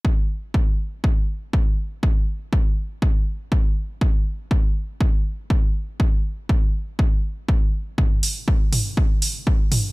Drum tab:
HH |--------|--------|--------|--------|
T2 |--------|--------|--------|--------|
BD |o-o-o-o-|o-o-o-o-|o-o-o-o-|o-o-o-o-|

HH |-o-o-o-o|
T2 |o--o---o|
BD |o-o-o-o-|